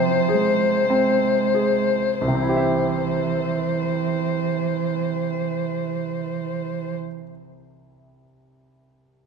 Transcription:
Already playing: C3 F3 C4 G#4 C5
0.29 G#4
0.34 G#3
0.90 G#3 C4
1.55 G#4
2.21 C2 E3 C5
2.28 C3
2.35 C4
2.42 E4
2.49 G4
2.56 E5

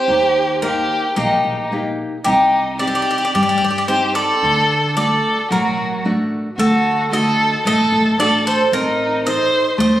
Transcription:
Already playing: G4 C5
0.08 D#2 D#3
0.62 A#3 D#4 G4 A#4
1.16 A#1 A#3 D#4 G4
1.44 A#1
1.72 A#3 D#4 G4
2.24 C2 C3 D#4 G4
2.79 C4 D#4 G4 D5
2.87 D5
2.95 D5
3.02 D5
3.11 D5
3.18 D5
3.25 D5
3.34 G2 G3 G4 D5
3.43 D5
3.49 D5
3.58 G2 D5
3.64 D5
3.70 D5
3.78 D5
3.88 C4 D#4 G4 C5
4.15 A4 D5
4.42 D2 D3
4.97 A3 D4 F#4 A4 D5
5.50 A1 F#3 F#4 A#4
5.77 A1
6.05 A3 D4 F#4
6.58 D2 A3 F#4 A4
7.11 D3 A3 F#4 A4 D#5
7.65 A1 A3 A4 D#5
7.92 A1
8.19 A3 D4 F#4 A4 D5
8.47 A4 C5
8.72 A1 C4 D#4 A#4
9.26 D#4 A4 C5 D#5
9.78 D#2 A3 C5 D#5

